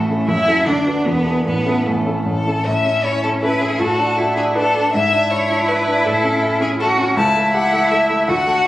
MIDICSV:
0, 0, Header, 1, 4, 480
1, 0, Start_track
1, 0, Key_signature, 3, "major"
1, 0, Tempo, 391901
1, 340, Time_signature, 3, 2, 24, 8
1, 4194, Tempo, 373832
1, 10936, End_track
2, 0, Start_track
2, 0, Title_t, "Violin"
2, 0, Program_c, 0, 40
2, 0, Note_on_c, 0, 69, 68
2, 328, Note_off_c, 0, 69, 0
2, 334, Note_on_c, 0, 76, 91
2, 807, Note_on_c, 0, 74, 69
2, 825, Note_off_c, 0, 76, 0
2, 1276, Note_off_c, 0, 74, 0
2, 1284, Note_on_c, 0, 71, 70
2, 1767, Note_off_c, 0, 71, 0
2, 1772, Note_on_c, 0, 71, 73
2, 2268, Note_on_c, 0, 69, 55
2, 2287, Note_off_c, 0, 71, 0
2, 2755, Note_off_c, 0, 69, 0
2, 2763, Note_on_c, 0, 69, 81
2, 3254, Note_on_c, 0, 76, 93
2, 3272, Note_off_c, 0, 69, 0
2, 3724, Note_on_c, 0, 73, 87
2, 3742, Note_off_c, 0, 76, 0
2, 3948, Note_off_c, 0, 73, 0
2, 3955, Note_on_c, 0, 69, 72
2, 4050, Note_off_c, 0, 69, 0
2, 4193, Note_on_c, 0, 71, 91
2, 4434, Note_on_c, 0, 68, 79
2, 4453, Note_off_c, 0, 71, 0
2, 4675, Note_on_c, 0, 69, 85
2, 4694, Note_off_c, 0, 68, 0
2, 5393, Note_off_c, 0, 69, 0
2, 5401, Note_on_c, 0, 68, 70
2, 5498, Note_off_c, 0, 68, 0
2, 5642, Note_on_c, 0, 69, 87
2, 6117, Note_off_c, 0, 69, 0
2, 6125, Note_on_c, 0, 76, 105
2, 6608, Note_on_c, 0, 73, 99
2, 6627, Note_off_c, 0, 76, 0
2, 7093, Note_on_c, 0, 71, 84
2, 7113, Note_off_c, 0, 73, 0
2, 7572, Note_on_c, 0, 69, 96
2, 7591, Note_off_c, 0, 71, 0
2, 8277, Note_off_c, 0, 69, 0
2, 8285, Note_on_c, 0, 68, 83
2, 8380, Note_off_c, 0, 68, 0
2, 8529, Note_on_c, 0, 69, 92
2, 8623, Note_off_c, 0, 69, 0
2, 9008, Note_on_c, 0, 81, 104
2, 9449, Note_off_c, 0, 81, 0
2, 9479, Note_on_c, 0, 78, 110
2, 9946, Note_on_c, 0, 76, 90
2, 9966, Note_off_c, 0, 78, 0
2, 10424, Note_off_c, 0, 76, 0
2, 10431, Note_on_c, 0, 78, 100
2, 10928, Note_off_c, 0, 78, 0
2, 10936, End_track
3, 0, Start_track
3, 0, Title_t, "Cello"
3, 0, Program_c, 1, 42
3, 0, Note_on_c, 1, 57, 79
3, 342, Note_on_c, 1, 64, 103
3, 360, Note_off_c, 1, 57, 0
3, 818, Note_on_c, 1, 62, 80
3, 837, Note_off_c, 1, 64, 0
3, 1290, Note_on_c, 1, 59, 81
3, 1308, Note_off_c, 1, 62, 0
3, 1780, Note_off_c, 1, 59, 0
3, 1788, Note_on_c, 1, 59, 81
3, 2276, Note_on_c, 1, 57, 64
3, 2295, Note_off_c, 1, 59, 0
3, 3013, Note_off_c, 1, 57, 0
3, 3256, Note_on_c, 1, 61, 70
3, 4194, Note_on_c, 1, 64, 67
3, 4213, Note_off_c, 1, 61, 0
3, 4681, Note_on_c, 1, 66, 73
3, 4700, Note_off_c, 1, 64, 0
3, 5161, Note_on_c, 1, 64, 70
3, 5180, Note_off_c, 1, 66, 0
3, 5654, Note_on_c, 1, 62, 75
3, 5673, Note_off_c, 1, 64, 0
3, 6137, Note_on_c, 1, 64, 87
3, 6157, Note_off_c, 1, 62, 0
3, 8518, Note_off_c, 1, 64, 0
3, 8526, Note_on_c, 1, 66, 86
3, 8995, Note_off_c, 1, 66, 0
3, 9013, Note_on_c, 1, 64, 99
3, 10440, Note_on_c, 1, 66, 87
3, 10459, Note_off_c, 1, 64, 0
3, 10936, Note_off_c, 1, 66, 0
3, 10936, End_track
4, 0, Start_track
4, 0, Title_t, "Grand piano"
4, 0, Program_c, 2, 0
4, 0, Control_c, 2, 64, 127
4, 0, Note_on_c, 2, 33, 58
4, 0, Note_on_c, 2, 45, 56
4, 0, Note_on_c, 2, 61, 50
4, 0, Note_on_c, 2, 64, 51
4, 0, Note_on_c, 2, 69, 55
4, 114, Note_off_c, 2, 61, 0
4, 114, Note_on_c, 2, 61, 46
4, 119, Note_off_c, 2, 64, 0
4, 119, Note_on_c, 2, 64, 47
4, 125, Note_off_c, 2, 69, 0
4, 125, Note_on_c, 2, 69, 51
4, 320, Note_off_c, 2, 61, 0
4, 323, Note_off_c, 2, 64, 0
4, 326, Note_off_c, 2, 69, 0
4, 344, Note_on_c, 2, 42, 62
4, 345, Note_on_c, 2, 30, 56
4, 364, Control_c, 2, 64, 0
4, 375, Note_off_c, 2, 45, 0
4, 377, Note_off_c, 2, 33, 0
4, 544, Control_c, 2, 64, 127
4, 568, Note_off_c, 2, 42, 0
4, 569, Note_off_c, 2, 30, 0
4, 577, Note_on_c, 2, 61, 45
4, 584, Note_on_c, 2, 66, 45
4, 589, Note_on_c, 2, 69, 54
4, 788, Note_off_c, 2, 61, 0
4, 792, Note_off_c, 2, 66, 0
4, 795, Note_off_c, 2, 69, 0
4, 809, Note_on_c, 2, 50, 54
4, 811, Note_on_c, 2, 38, 64
4, 835, Control_c, 2, 64, 0
4, 1012, Control_c, 2, 64, 127
4, 1040, Note_off_c, 2, 50, 0
4, 1041, Note_off_c, 2, 38, 0
4, 1053, Note_on_c, 2, 62, 44
4, 1057, Note_on_c, 2, 66, 45
4, 1063, Note_on_c, 2, 71, 47
4, 1267, Note_off_c, 2, 62, 0
4, 1269, Note_off_c, 2, 66, 0
4, 1272, Note_off_c, 2, 71, 0
4, 1291, Note_on_c, 2, 28, 54
4, 1291, Note_on_c, 2, 40, 57
4, 1313, Control_c, 2, 64, 0
4, 1510, Control_c, 2, 64, 127
4, 1525, Note_off_c, 2, 28, 0
4, 1525, Note_off_c, 2, 40, 0
4, 1531, Note_on_c, 2, 62, 42
4, 1535, Note_on_c, 2, 64, 40
4, 1538, Note_on_c, 2, 68, 47
4, 1754, Note_off_c, 2, 62, 0
4, 1756, Note_off_c, 2, 64, 0
4, 1757, Note_off_c, 2, 68, 0
4, 1776, Note_on_c, 2, 45, 53
4, 1779, Note_on_c, 2, 33, 48
4, 1806, Control_c, 2, 64, 0
4, 2015, Control_c, 2, 64, 127
4, 2019, Note_off_c, 2, 45, 0
4, 2020, Note_off_c, 2, 33, 0
4, 2031, Note_on_c, 2, 61, 42
4, 2035, Note_on_c, 2, 64, 40
4, 2038, Note_on_c, 2, 69, 48
4, 2252, Note_off_c, 2, 61, 0
4, 2254, Note_off_c, 2, 64, 0
4, 2256, Note_off_c, 2, 69, 0
4, 2277, Note_on_c, 2, 45, 51
4, 2278, Note_on_c, 2, 33, 52
4, 2514, Note_off_c, 2, 45, 0
4, 2515, Note_off_c, 2, 33, 0
4, 2520, Note_on_c, 2, 61, 41
4, 2524, Note_on_c, 2, 64, 40
4, 2531, Note_on_c, 2, 69, 45
4, 2740, Note_off_c, 2, 61, 0
4, 2743, Note_off_c, 2, 64, 0
4, 2747, Note_off_c, 2, 69, 0
4, 2765, Note_on_c, 2, 33, 47
4, 2769, Note_on_c, 2, 45, 47
4, 3004, Note_off_c, 2, 33, 0
4, 3006, Note_off_c, 2, 45, 0
4, 3019, Note_on_c, 2, 61, 38
4, 3023, Note_on_c, 2, 64, 39
4, 3028, Note_on_c, 2, 69, 44
4, 3235, Note_off_c, 2, 61, 0
4, 3237, Note_off_c, 2, 64, 0
4, 3239, Note_off_c, 2, 69, 0
4, 3261, Note_on_c, 2, 45, 58
4, 3280, Control_c, 2, 64, 0
4, 3503, Note_on_c, 2, 61, 49
4, 3522, Control_c, 2, 64, 127
4, 3729, Note_on_c, 2, 64, 50
4, 3874, Note_off_c, 2, 61, 0
4, 3962, Note_on_c, 2, 61, 45
4, 4103, Note_off_c, 2, 64, 0
4, 4195, Note_on_c, 2, 69, 51
4, 4340, Note_off_c, 2, 61, 0
4, 4429, Note_on_c, 2, 61, 51
4, 4580, Note_off_c, 2, 69, 0
4, 4635, Note_off_c, 2, 45, 0
4, 4669, Note_on_c, 2, 45, 56
4, 4672, Note_off_c, 2, 61, 0
4, 4698, Control_c, 2, 64, 0
4, 4907, Note_on_c, 2, 62, 51
4, 4943, Control_c, 2, 64, 127
4, 5155, Note_on_c, 2, 66, 55
4, 5300, Note_off_c, 2, 62, 0
4, 5407, Note_on_c, 2, 62, 51
4, 5545, Note_off_c, 2, 66, 0
4, 5643, Note_on_c, 2, 71, 58
4, 5794, Note_off_c, 2, 62, 0
4, 5890, Note_on_c, 2, 62, 53
4, 6035, Note_off_c, 2, 71, 0
4, 6085, Note_off_c, 2, 45, 0
4, 6132, Note_off_c, 2, 62, 0
4, 6139, Note_on_c, 2, 44, 65
4, 6157, Control_c, 2, 64, 0
4, 6324, Control_c, 2, 64, 127
4, 6378, Note_on_c, 2, 62, 57
4, 6621, Note_on_c, 2, 64, 58
4, 6760, Note_off_c, 2, 62, 0
4, 6864, Note_on_c, 2, 62, 52
4, 7001, Note_off_c, 2, 64, 0
4, 7103, Note_on_c, 2, 71, 56
4, 7242, Note_off_c, 2, 62, 0
4, 7339, Note_on_c, 2, 62, 56
4, 7481, Note_off_c, 2, 71, 0
4, 7531, Note_off_c, 2, 44, 0
4, 7574, Note_off_c, 2, 62, 0
4, 7575, Note_on_c, 2, 45, 65
4, 7597, Control_c, 2, 64, 0
4, 7806, Note_on_c, 2, 61, 56
4, 7835, Control_c, 2, 64, 127
4, 8048, Note_on_c, 2, 64, 58
4, 8188, Note_off_c, 2, 61, 0
4, 8280, Note_on_c, 2, 61, 58
4, 8430, Note_off_c, 2, 64, 0
4, 8521, Note_on_c, 2, 69, 59
4, 8665, Note_off_c, 2, 61, 0
4, 8763, Note_on_c, 2, 61, 57
4, 8906, Note_off_c, 2, 69, 0
4, 8963, Note_off_c, 2, 45, 0
4, 8998, Note_on_c, 2, 37, 70
4, 9003, Note_off_c, 2, 61, 0
4, 9027, Control_c, 2, 64, 0
4, 9221, Control_c, 2, 64, 127
4, 9242, Note_on_c, 2, 57, 58
4, 9482, Note_on_c, 2, 67, 61
4, 9622, Note_off_c, 2, 57, 0
4, 9720, Note_on_c, 2, 57, 59
4, 9860, Note_off_c, 2, 67, 0
4, 9958, Note_on_c, 2, 69, 60
4, 10099, Note_off_c, 2, 57, 0
4, 10193, Note_on_c, 2, 57, 53
4, 10339, Note_off_c, 2, 69, 0
4, 10388, Note_off_c, 2, 37, 0
4, 10431, Note_on_c, 2, 38, 69
4, 10434, Note_off_c, 2, 57, 0
4, 10457, Control_c, 2, 64, 0
4, 10672, Note_on_c, 2, 57, 53
4, 10692, Control_c, 2, 64, 127
4, 10936, Note_off_c, 2, 38, 0
4, 10936, Note_off_c, 2, 57, 0
4, 10936, End_track
0, 0, End_of_file